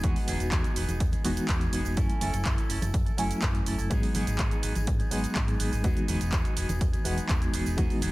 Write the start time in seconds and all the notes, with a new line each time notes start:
0.03 E2 E3 F#3 G#3 B3 D#4 F#4 G#4, kick, closed hi-hat, shaker
0.16 muted fingered electric bass stroke, open hi-hat, tambourine, shaker
0.27 E1 F#3 B3 D#4 G#4, open hi-hat, high conga, low conga, shaker
0.40 E1 B3 D#4 G#4, closed hi-hat, tambourine, shaker
0.52 E2 F#3 B3 G#4, kick, clap, closed hi-hat, tambourine, shaker
0.64 closed hi-hat, tambourine, high conga, shaker
0.76 E1 F#3 B3 D#4 G#4, open hi-hat, shaker
0.88 E1 B3 D#4 G#4, closed hi-hat, tambourine, high conga, shaker
1.00 E2, kick, closed hi-hat, tambourine, shaker
1.12 B3 D#4 G#4, muted fingered electric bass stroke, closed hi-hat, tambourine, high conga, shaker
1.24 E1 E3 F#3 G#3 B3 D#4 F#4 G#4, open hi-hat, shaker
1.37 muted fingered electric bass stroke, closed hi-hat, tambourine, shaker
1.49 E2, kick, clap, closed hi-hat, tambourine, shaker
1.61 B3 D#4 G#4, closed hi-hat, tambourine, shaker
1.72 E1 F#3 B3 D#4 G#4, open hi-hat, shaker
1.85 E1 B3 D#4 G#4, tambourine, shaker
1.96 F#2 F#3 A3 C#4 E4 A4 G#5, kick, closed hi-hat, tambourine, shaker
2.09 muted fingered electric bass stroke, closed hi-hat, tambourine, shaker
2.21 F#1 C#4 E4 A4, open hi-hat, high conga, low conga, shaker
2.33 F#1 E4 A4, closed hi-hat, tambourine, shaker
2.45 F#2 C#4 E4 A4, kick, clap, closed hi-hat, shaker
2.58 closed hi-hat, tambourine, shaker
2.69 F#1 C#4 E4 A4, open hi-hat, shaker
2.82 F#1 E4 A4, closed hi-hat, tambourine, high conga, shaker
2.94 F#2, kick, closed hi-hat, tambourine, shaker
3.06 E4 A4, muted fingered electric bass stroke, closed hi-hat, tambourine, high conga, shaker
3.17 F#1 F#3 A3 C#4 E4 A4 G#5, open hi-hat, shaker
3.31 muted fingered electric bass stroke, closed hi-hat, tambourine, shaker
3.42 F#2, kick, clap, closed hi-hat, tambourine, shaker
3.55 closed hi-hat, tambourine, shaker
3.66 F#1 C#4 E4 A4, open hi-hat, shaker
3.78 F#1 E4 A4, tambourine, shaker
3.90 G#2 F#3 G#3 B3 D#4 G#4, kick, closed hi-hat, tambourine, shaker
4.03 muted fingered electric bass stroke, open hi-hat, tambourine, shaker
4.14 G#1 F#3 B3 D#4 G#4, open hi-hat, high conga, low conga, shaker
4.27 G#1 B3 D#4 G#4, closed hi-hat, tambourine, shaker
4.39 G#2 F#3 D#4 G#4, kick, clap, closed hi-hat, tambourine, shaker
4.51 closed hi-hat, tambourine, high conga, shaker
4.62 G#1 F#3 B3 D#4 G#4, open hi-hat, shaker
4.75 G#1 B3 D#4 G#4, closed hi-hat, tambourine, high conga, shaker
4.87 G#2, kick, closed hi-hat, tambourine, shaker
4.99 B3 D#4 G#4, muted fingered electric bass stroke, closed hi-hat, tambourine, high conga, shaker
5.11 G#1 F#3 G#3 B3 D#4 G#4, open hi-hat, shaker
5.24 muted fingered electric bass stroke, closed hi-hat, tambourine, shaker
5.35 G#2, kick, clap, closed hi-hat, shaker
5.48 B3 D#4 G#4, closed hi-hat, tambourine, shaker
5.59 G#1 F#3 B3 D#4 G#4, open hi-hat, shaker
5.72 G#1 B3 D#4 G#4, tambourine, shaker
5.84 E2 E3 F#3 G#3 B3 D#4 F#4 G#4, kick, closed hi-hat, tambourine, shaker
5.97 muted fingered electric bass stroke, closed hi-hat, tambourine, shaker
6.08 E1 F#3 B3 D#4 G#4, open hi-hat, high conga, low conga, shaker
6.20 E1 B3 D#4 G#4, closed hi-hat, tambourine, shaker
6.32 E2 F#3 D#4 G#4, kick, clap, closed hi-hat, tambourine, shaker
6.45 closed hi-hat, tambourine, shaker
6.56 E1 F#3 B3 D#4 G#4, open hi-hat, shaker
6.68 E1 B3 D#4 G#4, closed hi-hat, tambourine, high conga, shaker
6.81 E2, kick, closed hi-hat, tambourine, shaker
6.93 B3 D#4 G#4, muted fingered electric bass stroke, closed hi-hat, tambourine, high conga, shaker
7.04 E1 E3 F#3 G#3 B3 D#4 F#4 G#4, open hi-hat, shaker
7.17 muted fingered electric bass stroke, closed hi-hat, tambourine, shaker
7.29 E2, kick, clap, closed hi-hat, tambourine, shaker
7.41 B3 D#4 G#4, closed hi-hat, tambourine, shaker
7.53 E1 F#3 B3 D#4 G#4, open hi-hat, shaker
7.65 E1 B3 D#4 G#4, tambourine, shaker
7.77 E2 E3 F#3 G#3 B3 D#4 F#4 G#4, kick, closed hi-hat, tambourine, shaker
7.90 muted fingered electric bass stroke, open hi-hat, tambourine, shaker
8.01 E1 F#3 B3 D#4 G#4, open hi-hat, high conga, low conga, shaker